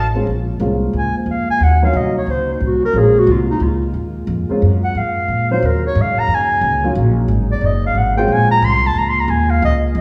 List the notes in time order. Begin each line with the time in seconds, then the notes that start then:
Already playing: A1
0.14 G#3 A#3 C4 C#4 F4
0.25 A#1 A#2 G#3 A#3 F4
0.60 C2 G#3 A#3 C4 C#4 F4
0.93 C#2 G#5
1.14 C5, muted upright bass stroke
1.26 F2
1.31 F5
1.49 G#5, muted upright bass stroke
1.59 D#2 F#3 C#4 D#4
1.63 F#5
1.82 F#3 A#3 C#4 D#4 F4 F5
1.93 C2 D#5
2.18 C#5
2.27 C#2 C5
2.54 D#4
2.60 C2
2.66 F#4
2.85 A#4
2.90 A#1 A#2 G#3 A#3 F4
2.95 G#3 C4 C#4 F4
2.99 G#4
3.19 F#4
3.27 C2
3.31 F4
3.51 D#4
3.60 C#2 F4
3.94 D#2
4.27 F2
4.49 G#3 A#3 C4 C#4 F4, muted upright bass stroke
4.62 F#2
4.84 F#5
4.95 G#2 F5
5.28 A#2
5.51 F#3 A#3 C#4 D#4 F4 C5
5.62 D#2 C#3 F#3 A#3 D#4 A#4
5.87 C#5
5.95 G#2
6.01 F5
6.17 A#5, muted upright bass stroke
6.27 F#2
6.35 G#5
6.61 C#2
6.84 F#3 A#3 C#4 D#4 F4
6.95 A#1
7.28 G#1
7.52 D5
7.61 F#1
7.66 D#5
7.87 F5
7.95 G#1 F#5
8.17 G#3 A#3 C4 C#4 F4 G5
8.27 A#1 A#2 G#3 F4
8.33 G#5
8.51 A#5
8.62 C2 C6
8.87 A5
8.95 C#2 A#5
9.09 C6
9.20 A#5
9.28 D#2 G#5
9.50 F5
9.62 C#2 D#5
9.95 F2